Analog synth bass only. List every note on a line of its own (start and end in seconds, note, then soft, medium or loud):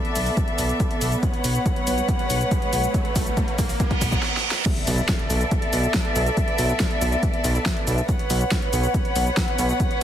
0.16 0.30 B1 medium
0.59 0.73 B1 loud
1.01 1.16 B1 loud
1.44 1.59 B1 loud
1.87 2.02 B1 medium
2.30 2.44 B1 loud
2.73 2.87 B1 loud
3.16 3.30 B1 loud
3.59 3.73 B1 medium
4.01 4.16 B1 loud
4.87 5.02 B1 loud
5.30 5.45 B1 medium
5.73 5.87 B1 loud
6.16 6.30 B1 loud
6.59 6.73 B1 loud
7.02 7.16 B1 medium
7.44 7.59 B1 loud
7.87 8.02 B1 loud
8.30 8.45 B1 loud
8.73 8.87 B1 medium
9.16 9.30 B1 loud
9.59 9.73 B1 loud